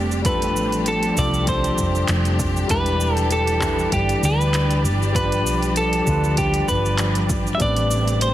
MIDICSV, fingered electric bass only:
0, 0, Header, 1, 2, 480
1, 0, Start_track
1, 0, Tempo, 612245
1, 199, Time_signature, 4, 2, 24, 8
1, 6538, End_track
2, 0, Start_track
2, 0, Title_t, "Fingered electric bass"
2, 0, Program_c, 0, 33
2, 0, Note_on_c, 0, 29, 87
2, 435, Note_off_c, 0, 29, 0
2, 435, Note_on_c, 0, 33, 88
2, 861, Note_off_c, 0, 33, 0
2, 917, Note_on_c, 0, 36, 86
2, 1342, Note_off_c, 0, 36, 0
2, 1396, Note_on_c, 0, 29, 77
2, 1627, Note_off_c, 0, 29, 0
2, 1631, Note_on_c, 0, 29, 79
2, 2059, Note_off_c, 0, 29, 0
2, 2114, Note_on_c, 0, 28, 95
2, 3020, Note_off_c, 0, 28, 0
2, 3074, Note_on_c, 0, 31, 82
2, 3246, Note_off_c, 0, 31, 0
2, 3315, Note_on_c, 0, 38, 84
2, 3794, Note_on_c, 0, 31, 86
2, 3806, Note_off_c, 0, 38, 0
2, 4276, Note_off_c, 0, 31, 0
2, 4276, Note_on_c, 0, 35, 88
2, 4701, Note_off_c, 0, 35, 0
2, 4758, Note_on_c, 0, 38, 84
2, 5182, Note_off_c, 0, 38, 0
2, 5238, Note_on_c, 0, 31, 79
2, 5902, Note_off_c, 0, 31, 0
2, 5959, Note_on_c, 0, 33, 99
2, 6538, Note_off_c, 0, 33, 0
2, 6538, End_track
0, 0, End_of_file